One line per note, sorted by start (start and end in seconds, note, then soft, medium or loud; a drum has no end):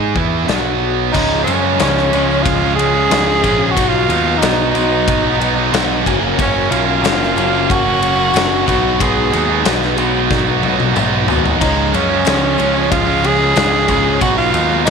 0.00 0.13 G#2 medium
0.00 0.14 G#3 medium
0.00 0.15 D#4 loud
0.00 0.15 G#4 medium
0.14 0.46 E2 medium
0.14 0.48 E3 medium
0.14 0.48 B3 medium
0.14 0.48 E4 loud
0.14 kick loud
0.48 1.10 B1 medium
0.48 1.12 B2 medium
0.48 1.13 F#3 medium
0.48 1.13 B3 medium
0.48 snare loud
0.48 closed hi-hat medium
1.12 1.45 C#2 medium
1.12 1.44 C#3 medium
1.12 1.45 F3 medium
1.12 3.74 G#3 medium
1.12 1.47 G#3 medium
1.12 1.47 C#4 loud
1.12 1.43 D#4 medium
1.12 3.74 F4 medium
1.12 3.74 C#5 medium
1.12 kick loud
1.12 crash loud
1.12 tambourine medium
1.43 1.78 C#3 medium
1.43 1.63 F3 medium
1.43 1.63 G#3 medium
1.43 2.44 C#4 medium
1.43 ride medium
1.43 tambourine medium
1.48 1.78 F#2 medium
1.48 1.61 C#4 medium
1.62 1.79 F3 medium
1.62 1.80 G#3 medium
1.62 1.80 C#4 medium
1.79 2.10 C#2 medium
1.79 2.11 C#3 medium
1.79 2.12 F3 loud
1.79 2.13 G#3 loud
1.79 2.13 C#4 loud
1.79 snare loud
1.79 ride medium
1.79 tambourine loud
1.96 snare soft
1.96 tambourine soft
2.12 2.43 C#2 medium
2.12 2.75 C#3 medium
2.12 2.62 F3 medium
2.12 2.61 G#3 medium
2.12 2.59 C#4 medium
2.12 ride medium
2.12 tambourine medium
2.27 2.62 F3 medium
2.27 2.61 G#3 medium
2.27 2.59 C#4 medium
2.31 tambourine soft
2.42 3.07 C#2 medium
2.42 2.75 F4 loud
2.42 kick loud
2.42 ride loud
2.60 2.76 F3 medium
2.60 2.77 G#3 medium
2.60 2.78 C#4 medium
2.76 3.08 C#3 medium
2.76 2.93 F3 medium
2.76 2.93 G#3 medium
2.76 2.91 C#4 medium
2.76 3.72 G#4 loud
2.76 ride medium
2.76 tambourine soft
2.92 3.09 F3 medium
2.92 3.10 G#3 medium
2.92 3.10 C#4 medium
3.09 3.41 C#2 medium
3.09 3.40 C#3 medium
3.09 3.41 F3 loud
3.09 3.42 G#3 medium
3.09 3.43 C#4 loud
3.09 snare loud
3.09 ride loud
3.09 tambourine medium
3.29 tambourine soft
3.41 3.74 A#1 medium
3.41 3.73 C#3 medium
3.41 3.59 F3 medium
3.41 3.58 G#3 medium
3.41 3.57 C#4 medium
3.41 kick medium
3.41 ride medium
3.46 tambourine medium
3.58 3.75 F3 medium
3.58 3.74 G#3 medium
3.58 3.73 C#4 medium
3.70 3.90 F#4 loud
3.75 4.07 B1 medium
3.75 4.39 B2 medium
3.75 4.08 F#3 medium
3.75 6.03 G#3 medium
3.75 4.08 B3 medium
3.75 6.03 D#4 medium
3.75 4.09 D#4 loud
3.75 4.10 F#4 loud
3.75 6.03 B4 medium
3.75 kick loud
3.75 ride loud
3.75 tambourine medium
3.89 4.39 F4 loud
4.08 4.39 D#2 medium
4.08 4.39 B2 medium
4.08 4.41 F#3 medium
4.08 4.26 B3 medium
4.08 4.25 D#4 medium
4.08 4.24 F#4 loud
4.08 ride medium
4.08 tambourine medium
4.25 4.41 F#3 medium
4.25 4.40 B3 medium
4.25 4.41 D#4 medium
4.25 4.42 F#4 medium
4.38 4.72 B1 medium
4.38 5.06 B2 loud
4.38 4.73 F#3 loud
4.38 4.73 B3 loud
4.38 4.70 D#4 medium
4.42 4.74 D#4 loud
4.42 4.75 F#4 loud
4.42 snare loud
4.42 ride loud
4.42 tambourine loud
4.60 tambourine soft
4.71 5.23 B2 medium
4.71 5.38 F#3 medium
4.71 5.23 B3 medium
4.71 5.67 D#4 loud
4.71 5.22 D#4 medium
4.71 ride medium
4.75 5.05 B1 medium
4.75 5.22 F#4 medium
4.75 tambourine medium
4.89 5.26 F#3 medium
4.89 5.23 B3 medium
4.89 5.22 D#4 medium
4.89 tambourine soft
5.08 5.69 B1 medium
5.08 kick loud
5.08 ride loud
5.22 5.38 F#3 medium
5.22 5.38 B3 medium
5.22 5.39 D#4 medium
5.22 5.40 F#4 medium
5.37 5.70 B2 medium
5.37 5.71 F#3 medium
5.37 5.56 B3 medium
5.37 5.55 D#4 medium
5.37 5.54 F#4 medium
5.37 ride medium
5.42 tambourine soft
5.55 5.72 F#3 medium
5.55 5.70 B3 medium
5.55 5.71 D#4 medium
5.55 5.73 F#4 medium
5.71 6.03 B1 medium
5.71 6.02 B2 medium
5.71 6.04 F#3 loud
5.71 6.03 B3 loud
5.71 6.03 D#4 loud
5.71 6.05 F#4 loud
5.71 ride loud
5.75 snare loud
5.75 tambourine medium
6.02 6.35 F#2 medium
6.02 6.36 C#3 medium
6.02 8.63 F#3 medium
6.02 6.21 F#3 medium
6.02 6.19 A#3 loud
6.02 8.64 C#4 medium
6.02 6.19 C#4 loud
6.02 6.19 F#4 loud
6.02 8.63 A#4 medium
6.02 kick medium
6.07 6.37 F#1 medium
6.07 ride medium
6.07 tambourine medium
6.19 6.37 F#3 medium
6.19 6.37 A#3 medium
6.19 6.37 C#4 medium
6.19 6.39 F#4 medium
6.36 6.69 F#1 medium
6.36 7.00 F#2 medium
6.36 7.01 C#3 loud
6.36 6.69 F#3 medium
6.36 6.69 A#3 loud
6.36 6.70 C#4 medium
6.36 6.71 F#4 loud
6.36 kick loud
6.36 ride medium
6.36 tambourine medium
6.41 6.72 C#4 medium
6.69 7.01 B1 medium
6.69 7.02 C#3 medium
6.69 6.87 F#3 medium
6.69 6.86 A#3 medium
6.69 6.86 C#4 medium
6.69 7.72 F4 medium
6.69 6.85 F#4 loud
6.69 ride medium
6.69 tambourine medium
6.85 7.02 F#3 medium
6.85 7.02 A#3 medium
6.85 7.02 C#4 medium
6.85 7.04 F#4 medium
7.01 7.34 F#1 medium
7.01 7.68 F#2 medium
7.01 7.68 C#3 loud
7.01 7.35 F#3 loud
7.01 7.35 A#3 loud
7.01 7.36 C#4 loud
7.01 7.37 F#4 loud
7.01 ride loud
7.01 tambourine medium
7.06 snare loud
7.23 snare soft
7.35 7.67 F#1 medium
7.35 7.84 C#3 medium
7.35 7.85 F#3 medium
7.35 7.83 A#3 medium
7.35 7.83 C#4 medium
7.35 7.82 F#4 medium
7.35 ride medium
7.35 tambourine medium
7.51 7.86 F#3 medium
7.51 7.84 A#3 medium
7.51 7.83 C#4 medium
7.51 tambourine soft
7.70 8.31 F#1 medium
7.70 8.67 F#4 loud
7.70 kick loud
7.70 ride medium
7.83 7.98 F#3 medium
7.83 8.00 A#3 medium
7.83 8.01 C#4 medium
7.83 8.02 F#4 medium
8.00 8.32 C#3 medium
8.00 8.19 F#3 medium
8.00 8.18 A#3 medium
8.00 8.17 C#4 medium
8.00 8.16 F#4 medium
8.00 ride medium
8.00 tambourine soft
8.17 8.34 F#3 medium
8.17 8.34 A#3 medium
8.17 8.34 C#4 medium
8.17 8.35 F#4 medium
8.33 8.64 F#1 medium
8.33 8.65 F#2 loud
8.33 8.65 C#3 medium
8.33 8.65 F#3 loud
8.33 8.66 A#3 medium
8.33 8.66 C#4 loud
8.33 8.66 F#4 loud
8.33 snare loud
8.33 ride loud
8.33 tambourine medium
8.51 tambourine soft
8.67 8.98 B1 medium
8.67 8.97 B2 loud
8.67 8.98 F#3 loud
8.67 11.58 G#3 medium
8.67 8.84 B3 loud
8.67 11.58 D#4 medium
8.67 8.83 D#4 loud
8.67 9.02 F#4 medium
8.67 8.82 F#4 loud
8.67 11.58 B4 medium
8.67 kick medium
8.67 ride medium
8.67 tambourine medium
8.83 8.99 B3 medium
8.83 8.99 D#4 medium
8.83 9.00 F#4 medium
8.98 9.30 B1 medium
8.98 9.63 B2 medium
8.98 9.31 F#3 medium
8.98 9.32 B3 loud
8.98 9.33 D#4 medium
8.98 9.34 F#4 loud
8.98 9.65 G#4 loud
8.98 kick loud
8.98 ride loud
8.98 tambourine medium
9.32 9.63 D#2 medium
9.32 9.62 B2 medium
9.32 9.63 F#3 medium
9.32 9.49 B3 medium
9.32 9.48 D#4 medium
9.32 9.47 F#4 medium
9.32 ride medium
9.32 tambourine medium
9.48 9.64 F#3 medium
9.48 9.64 B3 medium
9.48 9.64 D#4 medium
9.48 9.65 F#4 medium
9.64 9.95 B1 medium
9.64 10.30 B2 loud
9.64 9.96 F#3 medium
9.64 9.97 B3 loud
9.64 9.98 D#4 loud
9.64 9.98 F#4 loud
9.64 snare loud
9.64 ride loud
9.64 tambourine medium
9.83 snare soft
9.83 tambourine soft
9.97 10.28 B1 medium
9.97 10.46 B2 medium
9.97 10.61 F#3 medium
9.97 10.48 B3 medium
9.97 10.47 D#4 medium
9.97 10.45 F#4 medium
9.97 ride medium
9.97 tambourine medium
10.14 10.48 F#3 medium
10.14 10.46 B3 medium
10.14 10.44 D#4 medium
10.14 tambourine soft
10.31 10.92 B1 medium
10.31 kick loud
10.31 snare medium
10.31 tambourine soft
10.47 10.62 F#3 medium
10.47 10.62 B3 medium
10.47 10.63 D#4 medium
10.47 10.64 F#4 medium
10.47 tambourine soft
10.61 10.93 B2 medium
10.61 10.93 F#3 medium
10.61 10.79 B3 medium
10.61 10.78 D#4 medium
10.61 10.77 F#4 medium
10.61 high tom medium
10.61 tambourine soft
10.78 10.94 F#3 medium
10.78 10.94 B3 medium
10.78 10.95 D#4 medium
10.78 10.96 F#4 medium
10.78 high tom medium
10.78 tambourine soft
10.94 11.26 B1 medium
10.94 11.58 B2 medium
10.94 11.25 F#3 medium
10.94 11.26 B3 medium
10.94 11.27 D#4 medium
10.94 11.28 F#4 medium
10.94 mid tom medium
10.94 tambourine medium
11.27 11.58 D#2 medium
11.27 11.58 B2 medium
11.27 11.58 F#3 medium
11.27 11.44 B3 medium
11.27 11.43 D#4 medium
11.27 11.42 F#4 medium
11.27 floor tom loud
11.27 tambourine medium
11.44 11.59 B3 soft
11.44 11.59 D#4 medium
11.44 11.58 F#4 medium
11.44 floor tom medium
11.44 tambourine soft
11.59 11.92 C#2 medium
11.59 11.91 C#3 loud
11.59 11.92 F3 loud
11.59 14.19 G#3 medium
11.59 11.94 G#3 loud
11.59 11.94 C#4 loud
11.59 11.96 D#4 loud
11.59 14.19 F4 medium
11.59 14.19 C#5 medium
11.59 kick loud
11.59 ride medium
11.59 tambourine medium
11.59 crash medium
11.92 12.24 F#2 medium
11.92 12.24 C#3 medium
11.92 12.10 F3 medium
11.92 12.09 G#3 medium
11.92 12.92 C#4 medium
11.92 12.07 C#4 medium
11.92 ride medium
11.92 tambourine medium
12.09 12.25 F3 medium
12.09 12.26 G#3 medium
12.09 12.26 C#4 medium
12.25 12.57 C#2 medium
12.25 12.56 C#3 medium
12.25 12.57 F3 loud
12.25 12.58 G#3 loud
12.25 12.59 C#4 loud
12.25 snare loud
12.25 ride loud
12.25 tambourine loud
12.43 tambourine soft
12.57 12.89 C#2 medium
12.57 13.22 C#3 medium
12.57 13.08 F3 medium
12.57 13.07 G#3 medium
12.57 13.06 C#4 medium
12.57 ride medium
12.57 tambourine medium
12.74 13.07 F3 medium
12.74 13.06 G#3 medium
12.74 13.05 C#4 medium
12.74 tambourine soft
12.91 13.53 C#2 medium
12.91 13.27 F4 loud
12.91 kick loud
12.91 ride medium
13.07 13.23 F3 medium
13.07 13.24 G#3 medium
13.07 13.25 C#4 medium
13.23 13.54 C#3 medium
13.23 13.40 F3 medium
13.23 13.39 G#3 medium
13.23 13.38 C#4 medium
13.23 14.21 G#4 loud
13.23 ride medium
13.23 tambourine soft
13.39 13.55 F3 medium
13.39 13.56 G#3 medium
13.39 13.57 C#4 medium
13.55 13.86 C#2 medium
13.55 13.87 C#3 loud
13.55 13.88 F3 medium
13.55 13.89 G#3 loud
13.55 13.90 C#4 medium
13.55 snare loud
13.55 ride medium
13.55 tambourine loud
13.88 14.19 C#2 medium
13.88 14.19 C#3 medium
13.88 14.05 F3 medium
13.88 14.04 G#3 medium
13.88 14.03 C#4 medium
13.88 kick medium
13.88 ride medium
13.88 tambourine medium
14.04 14.20 F3 medium
14.04 14.20 G#3 medium
14.04 14.19 C#4 medium
14.20 14.51 B1 medium
14.20 14.51 B2 loud
14.20 14.54 F#3 loud
14.20 14.90 G#3 medium
14.20 14.53 B3 loud
14.20 14.90 D#4 medium
14.20 14.54 D#4 loud
14.20 14.37 F#4 loud
14.20 14.90 B4 medium
14.20 kick loud
14.20 ride medium
14.20 tambourine medium
14.38 14.83 F4 loud
14.52 14.84 D#2 medium
14.52 14.84 B2 medium
14.52 14.72 F#3 medium
14.52 14.69 B3 medium
14.52 14.68 D#4 medium
14.52 ride medium
14.52 tambourine medium
14.69 14.86 F#3 medium
14.69 14.86 B3 medium
14.69 14.87 D#4 medium
14.85 14.90 B1 loud
14.85 14.90 B2 medium
14.85 14.90 F#3 loud
14.85 14.90 D#4 medium
14.85 ride loud
14.85 tambourine loud